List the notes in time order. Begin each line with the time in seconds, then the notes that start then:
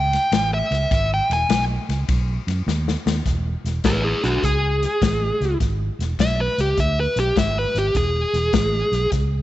Already playing: C#2 G5
0.13 snare, ride
0.32 A1, snare, ride
0.54 E5
0.71 C#2, snare, ride
0.91 G#1, kick, snare, ride
1.14 G5
1.30 E1 G#5, snare, ride
1.49 B1, snare, ride
1.89 C#2, snare, ride
2.09 B1, kick, snare, ride
2.47 F#2, snare, ride
2.67 D#2, snare
2.88 snare
3.06 D#2, snare
3.26 E1, kick, snare, closed hi-hat
3.64 E1, snare, closed hi-hat
3.84 A1 G#4 B4, kick, snare, closed hi-hat
4.03 E4 G#4
4.23 B1 D4 F#4, snare, closed hi-hat
4.43 C#2 G#4, kick, snare, closed hi-hat
4.83 snare, closed hi-hat
5.02 A1, kick, snare, closed hi-hat
5.41 C#2, snare, closed hi-hat
5.60 G#1, kick, snare, closed hi-hat
5.99 E1, snare, closed hi-hat
6.19 B1 E5, kick, snare, closed hi-hat
6.41 B4
6.58 C#2 G4, snare, closed hi-hat
6.77 D2 E5, kick, snare, closed hi-hat
7.00 B4
7.16 B1 G4, snare, closed hi-hat
7.36 G#1 E5, kick, snare, closed hi-hat
7.59 B4
7.75 G#1 G4, snare, closed hi-hat
7.95 E1 G#4, kick, snare, closed hi-hat
8.33 E1, snare, closed hi-hat
8.53 A1, kick, snare, closed hi-hat
8.92 B1, snare, closed hi-hat
9.12 C#2, kick, snare, closed hi-hat